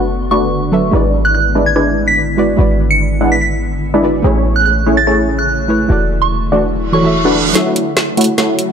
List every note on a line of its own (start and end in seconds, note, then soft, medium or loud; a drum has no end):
0.00 0.91 F#1 medium
0.00 4.20 D3 medium
0.00 0.69 F#3 medium
0.00 0.89 A3 medium
0.00 4.20 B3 medium
0.00 0.70 D4 medium
0.00 0.90 F#4 medium
0.00 0.70 A4 medium
0.00 0.71 B4 medium
0.00 0.71 E5 medium
0.31 0.91 A3 loud
0.31 0.91 D4 medium
0.31 0.91 F#4 medium
0.31 0.91 B4 medium
0.31 0.91 D5 loud
0.31 0.89 C#6 medium
0.72 0.90 F#3 medium
0.72 0.91 D4 medium
0.72 0.91 A4 medium
0.72 0.91 B4 medium
0.72 0.91 E5 medium
0.91 2.57 G#1 medium
0.91 2.35 G#3 medium
0.91 4.21 G#3 medium
0.91 1.53 G#3 medium
0.91 1.53 D4 medium
0.91 2.35 E4 medium
0.91 5.86 E4 medium
0.91 1.53 E4 medium
0.91 2.36 F#4 medium
0.91 1.53 B4 medium
0.91 2.36 B4 medium
0.91 1.53 D5 loud
0.91 2.37 D5 loud
1.25 1.31 F#6 medium
1.35 1.42 F#6 medium
1.55 1.65 G#3 medium
1.55 1.65 D4 medium
1.55 1.65 E4 medium
1.55 1.65 B4 medium
1.55 1.65 D5 loud
1.66 1.73 G#6 medium
1.76 3.18 G#3 medium
1.76 3.18 D4 medium
1.76 3.18 E4 medium
1.76 3.18 B4 medium
1.76 3.18 D5 medium
1.76 1.83 G#6 medium
2.08 2.18 B6 medium
2.37 2.55 G#3 medium
2.37 2.56 E4 medium
2.37 2.56 F#4 medium
2.37 2.57 B4 medium
2.37 2.57 D5 loud
2.56 4.22 G#1 medium
2.56 4.00 G#3 medium
2.56 4.01 E4 medium
2.56 4.01 F#4 medium
2.56 4.02 B4 medium
2.56 4.02 D5 loud
2.91 3.01 C#7 medium
3.21 3.36 G#3 medium
3.21 3.36 D4 medium
3.21 3.36 E4 medium
3.21 3.36 B4 medium
3.21 3.36 F#5 medium
3.32 3.38 B6 medium
3.42 3.49 B6 medium
3.94 4.22 G#3 medium
3.94 4.22 D4 medium
3.94 4.22 E4 medium
3.94 4.22 B4 medium
3.94 4.22 D5 loud
4.03 4.21 G#3 medium
4.03 4.22 E4 medium
4.03 4.22 F#4 medium
4.03 4.22 B4 medium
4.03 4.22 D5 loud
4.22 5.88 A1 medium
4.22 5.88 C#3 medium
4.22 5.66 A3 medium
4.22 7.52 A3 medium
4.22 4.84 A3 loud
4.22 4.84 C#4 medium
4.22 5.66 E4 medium
4.22 4.84 E4 medium
4.22 5.88 G#4 medium
4.22 5.67 G#4 medium
4.22 4.84 G#4 medium
4.22 5.67 B4 medium
4.22 4.84 C#5 loud
4.26 5.68 C#5 medium
4.56 4.62 F#6 medium
4.66 4.73 F#6 medium
4.86 4.96 A3 medium
4.86 4.96 C#4 medium
4.86 4.96 E4 medium
4.86 4.96 G#4 medium
4.86 4.96 C#5 loud
4.97 5.03 A6 medium
5.07 5.89 A3 medium
5.07 5.89 C#4 medium
5.07 5.89 E4 medium
5.07 5.89 G#4 medium
5.07 5.89 C#5 medium
5.07 5.14 A6 medium
5.39 5.94 F#6 medium
5.68 5.87 A3 medium
5.68 5.87 E4 medium
5.68 5.87 G#4 medium
5.68 5.88 B4 medium
5.68 5.88 C#5 loud
5.88 7.53 E1 medium
5.88 7.54 D3 medium
5.88 6.90 E3 medium
5.88 7.54 F#3 medium
5.88 6.91 E4 medium
5.88 7.54 E4 medium
5.88 6.91 F#4 medium
5.88 6.92 A4 medium
5.92 6.92 D5 loud
6.22 6.32 C#6 medium
6.52 6.67 E3 medium
6.52 6.67 A3 medium
6.52 6.67 D4 medium
6.52 6.67 F#4 medium
6.52 6.67 D5 medium
6.73 reverse cymbal medium
6.92 7.01 E3 medium
6.92 7.01 E4 medium
6.92 7.02 F#4 medium
6.92 7.02 A4 medium
6.92 7.02 C#5 loud
6.92 7.51 C#6 medium
7.02 7.52 E3 medium
7.02 7.52 E4 medium
7.02 7.53 F#4 medium
7.02 7.53 A4 medium
7.06 7.54 E5 loud
7.25 7.53 E3 medium
7.25 7.53 A3 medium
7.25 7.53 D4 medium
7.25 7.53 F#4 medium
7.25 7.53 B4 loud
7.53 8.72 C#3 medium
7.53 8.72 F#3 medium
7.53 8.15 A3 loud
7.53 8.72 A3 medium
7.53 8.72 C#4 medium
7.53 8.15 E4 medium
7.53 8.72 E4 medium
7.53 8.15 F#4 medium
7.53 8.72 G#4 medium
7.53 8.72 A4 medium
7.53 8.15 C#5 medium
7.53 8.15 F#5 loud
7.53 snare soft
7.53 closed hi-hat medium
7.53 riser medium
7.57 8.72 E5 loud
7.76 closed hi-hat medium
7.97 snare soft
7.97 closed hi-hat medium
8.17 8.27 A3 medium
8.17 8.27 E4 medium
8.17 8.27 F#4 medium
8.17 8.27 C#5 medium
8.17 8.27 F#5 loud
8.17 closed hi-hat soft
8.21 closed hi-hat medium
8.24 closed hi-hat medium
8.38 8.72 A3 medium
8.38 8.72 E4 medium
8.38 8.72 F#4 medium
8.38 8.72 C#5 medium
8.38 8.72 F#5 medium
8.38 snare medium
8.38 closed hi-hat medium
8.59 closed hi-hat medium